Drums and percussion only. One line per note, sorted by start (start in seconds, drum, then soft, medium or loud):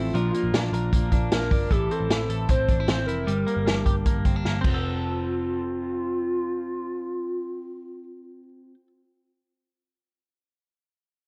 0.14 closed hi-hat medium
0.34 closed hi-hat medium
0.54 snare loud
0.54 closed hi-hat medium
0.74 closed hi-hat medium
0.93 kick medium
0.93 closed hi-hat medium
1.12 kick medium
1.12 closed hi-hat medium
1.31 snare loud
1.31 closed hi-hat medium
1.51 kick medium
1.51 open hi-hat medium
1.71 kick medium
1.71 closed hi-hat medium
1.91 closed hi-hat medium
2.10 snare medium
2.10 closed hi-hat medium
2.30 closed hi-hat medium
2.49 kick medium
2.49 closed hi-hat medium
2.69 kick medium
2.69 closed hi-hat medium
2.88 snare loud
2.88 closed hi-hat medium
3.08 closed hi-hat medium
3.28 closed hi-hat medium
3.48 closed hi-hat medium
3.67 snare medium
3.67 closed hi-hat medium
3.86 kick medium
3.86 closed hi-hat medium
4.06 kick medium
4.06 closed hi-hat medium
4.25 kick medium
4.25 closed hi-hat medium
4.45 snare soft
4.64 kick medium
4.64 crash medium